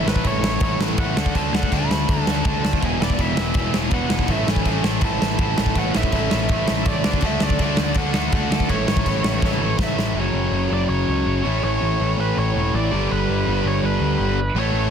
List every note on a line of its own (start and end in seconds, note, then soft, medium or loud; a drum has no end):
0.00 0.42 A2 medium
0.00 0.43 E3 medium
0.00 0.44 A3 loud
0.00 0.43 C#4 loud
0.00 0.41 E4 loud
0.04 0.20 A1 medium
0.04 0.23 A2 medium
0.04 0.23 E3 medium
0.04 0.24 A3 medium
0.04 0.26 B4 medium
0.04 snare loud
0.16 kick medium
0.24 0.39 A1 loud
0.24 0.40 A2 medium
0.24 0.41 E3 loud
0.24 0.42 A3 loud
0.24 0.77 C#5 loud
0.24 kick loud
0.24 crash medium
0.41 0.57 A1 medium
0.41 0.59 A2 medium
0.41 0.59 E3 loud
0.41 0.61 A3 loud
0.41 0.98 C#4 medium
0.41 0.97 E4 medium
0.41 snare loud
0.46 0.96 A2 medium
0.60 0.76 A1 loud
0.60 0.78 A2 loud
0.60 0.78 E3 loud
0.60 0.78 A3 loud
0.60 kick loud
0.60 crash medium
0.79 0.94 A1 medium
0.79 0.97 A2 loud
0.79 0.98 E3 loud
0.79 0.99 A3 medium
0.79 snare loud
0.98 1.13 A1 medium
0.98 1.16 A2 loud
0.98 1.16 E3 loud
0.98 1.16 A3 loud
0.98 1.16 C#4 medium
0.98 1.16 E4 medium
0.98 1.33 F#5 loud
0.98 kick loud
0.98 crash medium
1.16 1.31 D2 medium
1.16 1.34 D3 loud
1.16 1.34 A3 medium
1.16 1.35 D4 loud
1.16 snare loud
1.20 1.73 F#4 loud
1.26 kick medium
1.35 1.50 D2 loud
1.35 1.53 D3 loud
1.35 1.53 A3 loud
1.35 1.54 D4 loud
1.35 1.55 A5 loud
1.35 kick medium
1.35 crash medium
1.53 1.68 D2 medium
1.53 1.70 D3 medium
1.53 1.71 A3 medium
1.53 1.72 D4 loud
1.53 1.73 F#5 loud
1.53 snare loud
1.63 kick medium
1.72 1.87 D2 loud
1.72 1.88 D3 loud
1.72 1.89 A3 loud
1.72 1.90 D4 loud
1.72 2.25 F#4 medium
1.72 2.10 B5 loud
1.72 kick loud
1.72 crash medium
1.90 2.05 D2 medium
1.90 2.07 D3 medium
1.90 2.08 A3 medium
1.90 2.08 D4 medium
1.90 snare loud
2.08 2.24 D2 medium
2.08 2.26 D3 loud
2.08 2.27 A3 loud
2.08 2.27 D4 loud
2.08 2.43 A5 loud
2.08 kick loud
2.08 crash medium
2.26 2.41 D2 medium
2.26 2.46 D3 medium
2.26 2.46 A3 loud
2.26 2.47 D4 loud
2.26 2.62 F#4 medium
2.26 snare loud
2.45 2.60 D2 loud
2.45 2.62 D3 medium
2.45 2.63 A3 loud
2.45 2.63 D4 loud
2.45 2.80 A5 loud
2.45 kick loud
2.45 crash medium
2.63 2.78 D2 medium
2.63 2.81 D3 medium
2.63 2.81 A3 loud
2.63 2.81 D4 loud
2.63 snare loud
2.73 kick medium
2.82 2.97 E1 medium
2.82 2.99 E2 loud
2.82 2.99 B2 loud
2.82 3.01 E3 loud
2.82 3.36 G#3 loud
2.82 3.36 B3 loud
2.82 3.37 E4 loud
2.82 3.03 G#5 loud
2.82 kick medium
2.82 crash medium
3.00 3.15 E1 medium
3.00 3.17 E2 medium
3.00 3.18 B2 medium
3.00 3.19 E3 medium
3.00 3.21 D5 medium
3.00 snare loud
3.10 kick loud
3.18 3.33 E1 loud
3.18 3.36 E2 loud
3.18 3.36 B2 medium
3.18 3.37 E3 loud
3.18 3.75 E5 medium
3.18 kick loud
3.18 crash medium
3.37 3.52 E1 medium
3.37 3.54 E2 medium
3.37 3.55 B2 medium
3.37 3.57 E3 medium
3.37 3.92 G#3 medium
3.37 3.92 B3 medium
3.37 3.95 E4 medium
3.37 snare loud
3.54 3.70 E1 medium
3.54 3.73 E2 medium
3.54 3.74 B2 medium
3.54 3.75 E3 loud
3.54 kick loud
3.54 crash medium
3.74 3.88 E1 medium
3.74 3.91 E2 medium
3.74 3.92 B2 medium
3.74 3.93 E3 medium
3.74 snare loud
3.91 4.06 E1 loud
3.91 4.10 E2 loud
3.91 4.11 B2 medium
3.91 4.11 E3 loud
3.91 4.29 G#3 medium
3.91 4.29 B3 medium
3.91 4.27 F#5 loud
3.91 kick loud
3.91 crash medium
3.95 4.31 E4 medium
4.09 4.24 E1 medium
4.09 4.28 E2 medium
4.09 4.28 B2 medium
4.09 4.30 E3 medium
4.09 snare loud
4.19 kick medium
4.26 4.43 A1 loud
4.26 4.48 A2 loud
4.26 4.44 E3 medium
4.26 4.45 A3 loud
4.26 kick medium
4.26 crash medium
4.30 4.49 E3 loud
4.30 4.49 A3 loud
4.30 4.84 C#4 loud
4.30 4.84 E4 loud
4.30 4.49 E5 loud
4.45 4.62 A1 medium
4.45 4.65 A2 medium
4.45 4.63 E3 medium
4.45 snare loud
4.49 4.66 E3 medium
4.49 4.67 A3 medium
4.49 4.83 G#5 loud
4.56 kick medium
4.65 4.81 A1 medium
4.65 4.83 A2 loud
4.65 4.84 E3 loud
4.65 4.85 A3 loud
4.65 kick loud
4.65 crash medium
4.84 4.98 A1 medium
4.84 5.01 A2 medium
4.84 5.03 E3 medium
4.84 5.04 A3 medium
4.84 5.38 C#4 medium
4.84 5.38 E4 loud
4.84 snare loud
5.01 5.17 A1 medium
5.01 5.20 A2 loud
5.01 5.21 E3 loud
5.01 5.22 A3 loud
5.01 5.38 A5 loud
5.01 kick loud
5.01 crash medium
5.21 5.36 A1 medium
5.21 5.38 A2 medium
5.21 5.39 E3 loud
5.21 5.40 A3 loud
5.21 snare loud
5.39 5.54 A1 loud
5.39 5.56 A2 loud
5.39 5.57 E3 medium
5.39 5.59 A3 loud
5.39 5.76 C#4 loud
5.39 5.76 E4 medium
5.39 5.78 A5 loud
5.39 kick loud
5.39 crash medium
5.58 5.72 A1 medium
5.58 5.75 A2 medium
5.58 5.76 E3 medium
5.58 5.78 A3 loud
5.58 snare loud
5.66 kick medium
5.75 5.90 A1 loud
5.75 5.93 A2 loud
5.75 5.94 E3 loud
5.75 5.95 A3 loud
5.75 6.31 C#4 loud
5.75 6.31 E4 loud
5.75 5.96 F#5 loud
5.75 kick loud
5.75 crash medium
5.94 6.10 A1 medium
5.94 6.12 A2 medium
5.94 6.13 E3 loud
5.94 6.14 A3 medium
5.94 6.87 E5 loud
5.94 snare loud
6.03 kick loud
6.12 6.27 A1 medium
6.12 6.30 A2 loud
6.12 6.31 E3 loud
6.12 6.32 A3 loud
6.12 kick loud
6.12 crash medium
6.31 6.47 A1 medium
6.31 6.48 A2 medium
6.31 6.49 E3 medium
6.31 6.50 A3 loud
6.31 6.86 C#4 medium
6.31 6.86 E4 medium
6.31 snare loud
6.49 6.64 A1 medium
6.49 6.65 A2 loud
6.49 6.66 E3 loud
6.49 6.67 A3 loud
6.49 kick loud
6.49 crash medium
6.66 6.83 A2 loud
6.66 6.84 E3 loud
6.66 6.85 A3 medium
6.66 snare loud
6.70 6.84 A1 medium
6.84 7.01 A1 loud
6.84 7.02 A2 medium
6.84 7.03 E3 loud
6.84 7.04 A3 loud
6.84 7.04 C#4 medium
6.84 7.04 E4 loud
6.84 7.21 D5 medium
6.84 kick loud
6.84 crash medium
7.03 7.20 D2 medium
7.03 7.20 D3 loud
7.03 7.22 A3 loud
7.03 7.21 D4 loud
7.03 7.60 F#4 loud
7.03 snare loud
7.13 kick medium
7.21 7.37 D2 loud
7.21 7.39 D3 loud
7.21 7.40 A3 loud
7.21 7.41 D4 loud
7.21 kick loud
7.21 crash medium
7.26 7.43 E5 loud
7.40 7.56 D2 medium
7.40 7.57 D3 medium
7.40 7.59 A3 medium
7.40 7.58 D4 loud
7.40 7.99 D5 loud
7.40 snare loud
7.50 kick loud
7.58 7.74 D2 medium
7.58 7.76 D3 loud
7.58 7.77 A3 loud
7.58 7.77 D4 loud
7.58 kick loud
7.58 crash medium
7.62 8.12 F#4 loud
7.77 7.93 D2 medium
7.77 7.95 D3 medium
7.77 7.97 A3 loud
7.77 7.96 D4 medium
7.77 snare loud
7.94 8.10 D2 loud
7.94 8.12 D3 medium
7.94 8.13 A3 loud
7.94 8.13 D4 loud
7.94 8.31 F#5 loud
7.94 kick loud
7.94 crash medium
8.13 8.29 D2 medium
8.13 8.31 D3 medium
8.13 8.32 A3 loud
8.13 8.32 D4 medium
8.13 8.49 F#4 medium
8.13 snare loud
8.32 8.47 D2 medium
8.32 8.49 D3 loud
8.32 8.50 A3 loud
8.32 8.50 D4 loud
8.32 8.71 F#5 loud
8.32 kick loud
8.32 crash medium
8.50 8.66 D2 medium
8.50 8.67 D3 medium
8.50 8.68 A3 loud
8.50 8.68 D4 loud
8.50 snare loud
8.60 kick medium
8.68 8.84 A1 loud
8.68 8.86 A2 loud
8.68 8.86 E3 loud
8.68 8.87 A3 loud
8.68 9.23 C#4 loud
8.68 9.22 E4 loud
8.68 9.76 C#5 medium
8.68 kick medium
8.68 crash medium
8.87 9.03 A1 medium
8.87 9.03 A2 medium
8.87 9.05 E3 medium
8.87 9.05 A3 medium
8.87 snare loud
8.97 kick loud
9.05 9.21 A1 medium
9.05 9.23 A2 loud
9.05 9.24 E3 loud
9.05 9.24 A3 loud
9.05 kick loud
9.05 crash medium
9.23 9.38 A1 medium
9.23 9.40 A2 medium
9.23 9.41 E3 medium
9.23 9.41 A3 loud
9.23 9.78 C#4 loud
9.23 9.78 E4 loud
9.23 snare loud
9.41 9.57 A1 medium
9.41 9.58 A2 loud
9.41 9.59 E3 loud
9.41 9.59 A3 loud
9.41 kick loud
9.41 snare medium
9.59 9.75 A1 medium
9.59 9.76 A2 medium
9.59 9.76 E3 medium
9.59 9.77 A3 loud
9.78 9.94 A1 loud
9.78 9.95 A2 loud
9.78 9.96 E3 loud
9.78 9.97 A3 loud
9.78 10.14 C#4 medium
9.78 10.15 E4 loud
9.78 kick loud
9.78 snare loud
9.83 10.16 E5 medium
9.95 10.11 A1 medium
9.95 10.14 A2 medium
9.95 10.15 E3 medium
9.95 10.15 A3 loud
9.95 snare loud
10.12 10.29 F#1 medium
10.12 10.68 F#2 loud
10.12 10.69 C#3 medium
10.12 10.67 F#3 loud
10.12 11.43 C#4 medium
10.12 11.44 F#4 loud
10.17 11.44 F#2 medium
10.17 11.44 A4 loud
10.17 10.70 C#5 medium
10.33 10.48 F#1 medium
10.51 10.66 F#1 medium
10.68 10.86 F#1 medium
10.68 11.44 F#2 medium
10.68 11.42 C#3 medium
10.68 11.42 F#3 medium
10.74 10.89 D5 medium
10.89 11.04 F#1 medium
10.89 11.63 C#5 medium
11.08 11.23 C#2 medium
11.26 11.41 F#1 medium
11.43 11.60 A1 medium
11.43 11.98 A2 medium
11.43 11.99 E3 loud
11.43 11.99 A3 loud
11.43 12.91 C#4 medium
11.43 12.91 E4 loud
11.47 12.92 A4 medium
11.63 11.78 A1 medium
11.63 12.15 C#5 medium
11.82 11.96 A1 medium
11.99 12.15 A1 medium
11.99 12.90 A2 medium
11.99 12.91 E3 medium
11.99 12.92 A3 medium
12.17 12.32 A1 medium
12.17 12.36 B4 medium
12.37 12.51 A1 medium
12.37 12.75 C#5 medium
12.56 12.70 E1 medium
12.74 12.88 A1 loud
12.74 13.09 D5 medium
12.90 13.06 G1 medium
12.90 13.45 G2 loud
12.90 13.46 D3 loud
12.90 13.47 G3 loud
12.90 14.38 D4 loud
12.90 14.38 G4 loud
12.90 14.39 B4 loud
13.12 13.26 G1 medium
13.12 13.68 B4 medium
13.29 13.43 G1 medium
13.47 13.62 G1 medium
13.47 14.38 G2 medium
13.47 14.38 D3 medium
13.47 14.39 G3 medium
13.64 13.79 G1 medium
13.64 13.85 C#5 medium
13.83 13.97 G1 medium
13.83 14.58 B4 medium
14.00 14.15 D2 medium
14.20 14.49 G1 loud
14.54 14.70 A1 medium
14.54 14.90 A2 medium
14.54 14.90 E3 loud
14.54 14.90 A3 loud
14.54 14.90 C#4 loud
14.59 14.90 E4 loud
14.59 14.90 A4 loud
14.59 14.90 C#5 loud
14.73 14.88 A1 medium